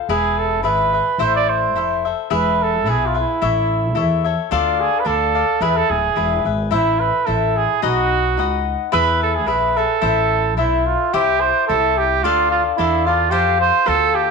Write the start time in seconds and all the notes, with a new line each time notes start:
0.09 E1 E4 G#4 B4 E5
0.38 A4
0.63 G#1 E4 G#4 B4 E5
0.93 G#4 B4 E5
1.18 A1 E4 A4 C5 E5
1.36 D5
1.49 C5
1.75 F1 E4 A4 C5 E5
2.05 A4 C5 E5
2.30 E1 E4 G#4 B4 E5
2.63 A4
2.85 B1 E4 G#4 B4 E5
2.89 G#4
3.06 F4
3.14 G#4 B4 E5
3.19 E4
3.42 A1 E4 A4 C#5 E5
3.95 E2 E4 A4 C#5 E5
4.24 A4 C#5 E5
4.51 D2 D4 F4 A4 D5 F5
4.81 G#4
5.00 B4
5.05 D2 D4 A4 D5 F5
5.35 A4 D5 F5
5.61 E2 E4 G#4 B4 E5
5.76 A4
5.90 D1 G#4
6.16 E1 E4 G#4 B4 E5
6.45 G#1 G#4 B4 E5
6.71 A1 E4 A4 C5 E5
7.00 B4
7.26 A1 E4 A4 C5 E5
7.56 G#4
7.82 B1 D#4 F#4 B4 D#5 F#5
8.37 C#2 D#4 B4 D#5 F#5
8.92 E2 E4 G#4 B4 E5
9.23 A4
9.35 G#4
9.47 A#1 E4 G#4 B4 E5
9.77 G#4 A4 B4 E5
10.01 A1 E4 A4 C5 E5
10.57 B1 E4 A4 C5 E5
10.86 F4
11.13 C2 E4 G4 C5 E5
11.41 C5
11.68 C2 E4 G4 A4 C5 E5
11.98 G4
12.24 D2 D4 F4 A4 D5 F5
12.52 F4
12.77 E2 D4 E4 A4 D5 F5
13.06 F4 A4 D5 F5
13.31 F2 F4 G4 A4 C5 F5
13.60 C5
13.86 D2 F4 A4 C5 F5
14.15 G4